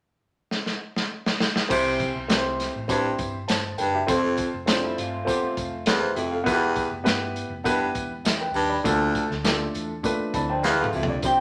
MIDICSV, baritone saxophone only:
0, 0, Header, 1, 2, 480
1, 0, Start_track
1, 0, Key_signature, 0, "major"
1, 0, Tempo, 595238
1, 1375, Time_signature, 4, 2, 24, 8
1, 9195, End_track
2, 0, Start_track
2, 0, Title_t, "Baritone saxophone"
2, 0, Program_c, 0, 67
2, 1375, Note_on_c, 0, 48, 83
2, 1714, Note_off_c, 0, 48, 0
2, 2339, Note_on_c, 0, 43, 80
2, 2529, Note_off_c, 0, 43, 0
2, 3059, Note_on_c, 0, 43, 69
2, 3249, Note_off_c, 0, 43, 0
2, 3291, Note_on_c, 0, 41, 82
2, 3631, Note_off_c, 0, 41, 0
2, 4735, Note_on_c, 0, 40, 76
2, 4927, Note_off_c, 0, 40, 0
2, 4970, Note_on_c, 0, 41, 74
2, 5164, Note_off_c, 0, 41, 0
2, 5215, Note_on_c, 0, 40, 89
2, 5553, Note_off_c, 0, 40, 0
2, 6170, Note_on_c, 0, 43, 77
2, 6364, Note_off_c, 0, 43, 0
2, 6896, Note_on_c, 0, 43, 78
2, 7088, Note_off_c, 0, 43, 0
2, 7135, Note_on_c, 0, 38, 83
2, 7474, Note_off_c, 0, 38, 0
2, 8575, Note_on_c, 0, 40, 75
2, 8767, Note_off_c, 0, 40, 0
2, 8814, Note_on_c, 0, 41, 68
2, 9006, Note_off_c, 0, 41, 0
2, 9195, End_track
0, 0, End_of_file